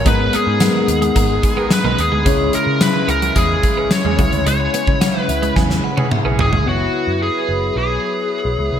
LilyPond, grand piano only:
<<
  \new Staff \with { instrumentName = "Grand piano" } { \time 4/4 \key cis \dorian \tempo 4 = 109 <gis b dis' ais'>1 | <gis cis' e' cis''>2.~ <gis cis' e' cis''>8 <gis cis' e' cis''>8~ | <gis cis' e' cis''>2.~ <gis cis' e' cis''>8 r8 | <b e' fis' cis''>1 | }
  \new Staff \with { instrumentName = "Grand piano" } { \clef bass \time 4/4 \key cis \dorian gis,4. r2 r8 | cis4. r2 cis8~ | cis4 r2. | r1 | }
>>